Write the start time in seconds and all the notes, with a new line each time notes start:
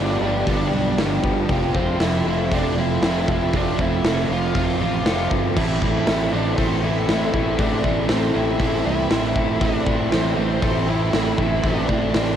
Already playing: G1 G2 D3 F3 G3 B3 D4 G4 D5 G5 B5
0.00 B3 F4
0.21 G1 G2 D3 F3 G3 B3 D4 F4 G4
0.47 G1 G2 D3 F3 G3 B3 D4 F4 G4, kick, open hi-hat
0.73 B1 G2 D3 F3 G3 B3 D4 F4 G4
0.98 G1 G2 D3 F3 G3 B3 D4 F4 G4, snare, open hi-hat
1.23 G1 G2 D3 F3 G3 B3 D4 G4, kick
1.49 F1 F2 C3 F3 A3 C4 F4 A4 E5 C6, kick, open hi-hat
1.75 F1 F2 C3 F3 A3 C4 F4, kick
2.00 F1 F2 C3 F3 A3 C4 E4 F4, snare, open hi-hat
2.26 F1 F2 C3 F3 A3 C4 F4
2.51 F1 F2 C3 F3 A3 C4 D4 F4, kick, open hi-hat
2.78 F2 C3 F3 A3 C4 E4 F4
3.01 F1 F2 C3 F3 A3 C4 F4, snare, open hi-hat
3.05 F3
3.27 F1 F2 C3 F3 A3 C4 E4 F4, kick
3.52 F1 F2 C3 F3 A3 C4 D4 F4 D6, kick, open hi-hat
3.79 F1 F2 C3 F3 A3 C4 E4 F4, kick
4.04 F1 F2 C3 F3 A3 C4 F4, snare, open hi-hat
4.29 F1 F2 C3 F3 A3 C4 F4
4.55 F1 F2 C3 F3 A3 C4 F4, kick, open hi-hat
4.80 A1 F2 C3 F3 A3 C4 F4
5.04 F1 F2 C3 F3 A3 C4 F4, snare, open hi-hat
5.30 G1 F2 C3 E3 F3 A3 C4 F4, kick
5.56 A1 A2 E3 A3 C4 E4 E5 G5 C6, kick, crash
5.82 A1 A2 E3 A3 C4 E4, kick
6.07 A1 A2 E3 A3 C4 E4, snare, open hi-hat
6.33 A1 A2 E3 A3 C4 D4 E4
6.58 A1 A2 E3 A3 C4 E4, kick, open hi-hat
6.83 A2 E3 A3 C4 E4
7.07 A1 A2 E3 A3 C4 E4, snare, open hi-hat
7.33 A1 A2 E3 A3 C4 E4, kick
7.59 A1 A2 E3 A3 C4 D4 E4, kick, open hi-hat
7.84 A1 A2 E3 A3 C4 E4, kick
8.09 A1 A2 E3 A3 C4 E4, snare, open hi-hat
8.34 A1 A2 E3 A3 C4 E4
8.59 A1 A2 E3 A3 C4 E4, kick, open hi-hat
8.86 C2 A2 E3 A3 C4 E4
9.09 A1 A2 E3 A3 C4 E4, snare, open hi-hat
9.36 A1 A2 E3 A3 C4 E4, kick
9.60 A1 A2 E3 A3 C4 D4 E4, kick, open hi-hat
9.86 A1 A2 E3 A3 C4 E4, kick
10.11 A1 A2 E3 A3 C4 E4, snare, open hi-hat
10.36 A1 A2 E3 A3 C4 E4
10.62 A1 A2 E3 A3 C4 E4, kick, open hi-hat
10.88 A2 E3 A3 C4 E4
11.12 A1 A2 E3 A3 C4 E4, snare, open hi-hat
11.38 A1 A2 E3 A3 C4 E4, kick
11.63 A1 A2 E3 A3 C4 D4 E4, kick, open hi-hat
11.88 A1 A2 E3 A3 C4 E4, kick
12.14 A1 A2 E3 A3 C4 E4, snare, open hi-hat